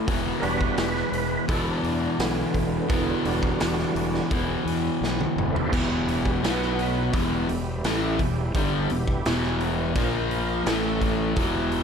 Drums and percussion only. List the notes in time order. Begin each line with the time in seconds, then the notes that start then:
0.08 kick, open hi-hat
0.43 open hi-hat
0.61 kick
0.78 snare, open hi-hat
0.96 snare
1.13 open hi-hat
1.49 kick, open hi-hat
1.84 open hi-hat
2.20 snare, open hi-hat
2.54 kick, open hi-hat
2.89 kick, open hi-hat
3.25 open hi-hat
3.43 kick
3.60 snare, open hi-hat
3.79 snare
3.96 open hi-hat
4.14 snare
4.31 kick, open hi-hat
4.68 open hi-hat
5.04 snare
5.21 high tom
5.38 mid tom
5.56 floor tom
5.73 kick, crash
6.08 open hi-hat
6.25 kick
6.44 snare, open hi-hat
6.62 snare
6.79 open hi-hat
7.13 kick, open hi-hat
7.49 open hi-hat
7.84 snare, open hi-hat
8.19 kick, open hi-hat
8.55 kick, open hi-hat
8.90 open hi-hat
9.08 kick
9.26 snare, open hi-hat
9.43 snare
9.61 open hi-hat
9.95 kick, open hi-hat
10.31 open hi-hat
10.66 snare, open hi-hat
11.01 kick, open hi-hat
11.36 kick, open hi-hat
11.72 open hi-hat